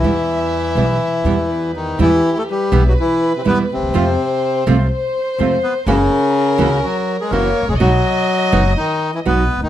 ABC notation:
X:1
M:4/4
L:1/16
Q:1/4=124
K:Em
V:1 name="Violin section"
e12 B4 | G4 B12 | c8 c8 | ^A12 ^c4 |
^d12- d2 z2 |]
V:2 name="Bandoneon"
[G,B,E]6 [G,B,E]2 z2 [G,B,E]6 | [G,B,E]2 z4 [G,B,E]2 z4 [G,B,E]2 z2 | [A,C=F]2 z4 [A,CF]2 z4 [A,CF]2 z2 | [^A,EF]2 z4 [A,EF]2 z4 [A,EF]2 z2 |
[B,^DF]2 z4 [B,DF]2 z4 [B,DF]2 z2 |]
V:3 name="Bandoneon"
[E,E]12- [E,E]2 [^D,^D]2 | [E,E]3 [A,A] [G,G]3 [F,F] [E,E]3 [C,C] [B,B]2 [C,C]2- | [C,C]6 z8 [B,B]2 | [^C,^C]8 [F,F]3 [^G,^G] [^A,^A]3 [G,G] |
[F,F]8 [^D,^D]3 [E,E] [B,B]3 [D,D] |]
V:4 name="Nylon-string guitar"
[B,,E,G,B,E]2 z4 [B,,E,G,B,E]2 z2 [B,,E,G,B,E]2 z4 | [B,,E,G,B,E]2 z4 [B,,E,G,B,E]2 z4 [B,,E,G,B,E]2 z2 | [C,=F,A,C=F]2 z4 [C,F,A,CF]2 z4 [C,F,A,CF]2 z2 | [^C,E,^A,^CF]2 z4 [C,E,A,CF]2 z4 [C,E,A,CF]2 z2 |
[B,,F,B,^DF]2 z4 [B,,F,B,DF]2 z4 [B,,F,B,DF]2 z2 |]
V:5 name="Upright bass" clef=bass
E,,4- E,,3/2 z/2 B,,,3/2 z2 z/2 E,,4- E,,3/2 z/2 | E,,3/2 z4 z/2 B,,,3/2 z4 z/2 E,,3/2 z D,,/2 ^D,,/2 E,,/2 | =F,,3/2 z4 z/2 C,,3/2 z4 z/2 F,,3/2 z2 z/2 | F,,,3/2 z4 z/2 ^C,,3/2 z4 z/2 F,,,3/2 z ^G,,,/2 A,,,/2 ^A,,,/2 |
B,,,3/2 z4 z/2 F,,,3/2 z4 z/2 B,,,3/2 z ^C,,/2 D,,/2 z/2 |]